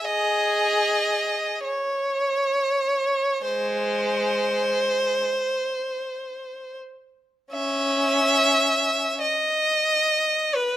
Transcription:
violin
0.04 G#4 D#5
1.64 C#5
3.45 G#3 C5
7.52 C#4 E5
9.21 D#5
10.55 B4

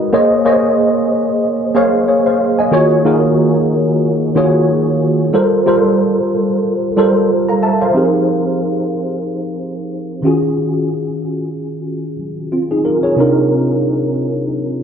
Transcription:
tine electric piano
Already playing: G#3 D#4 F#4 A#4 B4 D#5
0.13 A#3 G#4 C5 C#5 D#5
0.45 A#3 G#4 C5 C#5 D#5
1.75 A#3 G#4 C5 C#5 F5
2.08 G#4 C#5
2.26 C5 F5
2.59 D#5 G#5
2.71 D#3 A#3 F4 F#4 G#4 C#5
3.04 D#3 A#3 F4 F#4 G#4 A#4
4.35 D#3 A#3 F4 F#4 G#4 C#5
5.33 G3 F4 A4 A#4 C5
5.66 G3 F4 A4 A#4 C5
6.97 G3 F4 A4 A#4 C5
7.49 F5 A#5
7.63 E5 A5
7.81 C5 F5
7.94 F3 C4 D#4 G4 G#4
7.98 A#4
10.22 D#3 C#4 F4 F#4
10.26 G#4
12.52 C4 F4
12.71 D#4 G#4
12.85 F4 A#4
13.03 G#4 C#5
13.16 C3 C4 D4 D#4 F4
13.20 A#4

